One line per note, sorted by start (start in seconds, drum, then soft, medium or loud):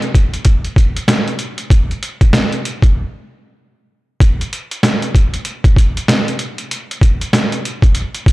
0.02 closed hi-hat soft
0.15 kick medium
0.15 closed hi-hat medium
0.34 closed hi-hat medium
0.45 kick medium
0.45 closed hi-hat medium
0.65 closed hi-hat soft
0.76 kick medium
0.76 closed hi-hat medium
0.96 closed hi-hat medium
1.08 snare loud
1.08 snare medium
1.08 closed hi-hat loud
1.28 closed hi-hat soft
1.39 closed hi-hat medium
1.58 closed hi-hat medium
1.70 kick loud
1.70 closed hi-hat loud
1.91 closed hi-hat soft
2.03 closed hi-hat medium
2.21 kick medium
2.21 closed hi-hat medium
2.33 snare loud
2.33 snare medium
2.33 closed hi-hat medium
2.52 closed hi-hat soft
2.65 closed hi-hat medium
2.82 kick loud
2.82 closed hi-hat medium
4.20 kick loud
4.20 closed hi-hat loud
4.41 closed hi-hat soft
4.53 closed hi-hat medium
4.71 closed hi-hat medium
4.83 snare loud
4.83 snare medium
4.83 closed hi-hat medium
5.02 closed hi-hat medium
5.15 kick medium
5.15 closed hi-hat medium
5.34 closed hi-hat medium
5.45 closed hi-hat medium
5.64 kick loud
5.64 closed hi-hat medium
5.76 kick medium
5.76 closed hi-hat medium
5.97 closed hi-hat medium
6.08 snare loud
6.08 snare medium
6.08 closed hi-hat loud
6.28 closed hi-hat medium
6.39 closed hi-hat medium
6.58 closed hi-hat medium
6.71 closed hi-hat loud
6.91 closed hi-hat medium
7.01 kick loud
7.01 closed hi-hat medium
7.21 closed hi-hat medium
7.33 snare loud
7.33 snare medium
7.33 closed hi-hat loud
7.52 closed hi-hat soft
7.65 closed hi-hat medium
7.82 kick loud
7.82 closed hi-hat medium
7.95 closed hi-hat medium
8.15 closed hi-hat medium
8.26 kick loud
8.26 closed hi-hat medium